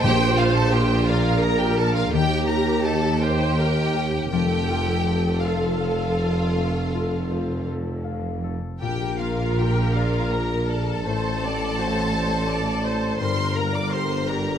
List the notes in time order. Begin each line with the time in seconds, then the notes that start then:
Already playing: C5
0.03 A#1 A#2 G4 G5
0.37 A#3 F4 F5
0.53 A4 A5
0.71 F4 G4 G5
1.06 F4 A#4 D5 F5
1.42 A#4 A#5
1.59 G4 G5
1.78 A4 D5 A5
1.95 F4 F5
2.11 D#2 D#3 G4 G5
2.47 D#4 A#4 A#5
2.83 A4 D#5 A5
3.19 G4 A#4 C5 G5
3.58 A#4 D#5
3.95 G4 A#4
4.29 F1 F2 F3 A4 G5
4.34 G4
4.70 F4
5.07 C5
5.42 F4 A4 F5
5.80 F5
6.18 A4
6.57 A3
6.95 F4
7.31 C5
7.67 A4
8.04 F5
8.44 A4
8.81 A#1 A#2 G4 A#4 G5
9.20 A#3 F4 F5
9.58 F4 G4 G5
9.95 F4 D5 F5
10.31 A#4 A#5
10.68 A4 D5 A5
11.05 A1 A2 C5
11.42 C4 D5
11.78 F#4 C5
12.13 C5 D5
12.49 C5 D5
12.83 C5 D5
13.19 G1 G2 A#4 C5 C6
13.54 A#3 A#4 A#5
13.73 D5 D6
13.91 G4 C5 C6
14.27 G4 A#4 D5 A#5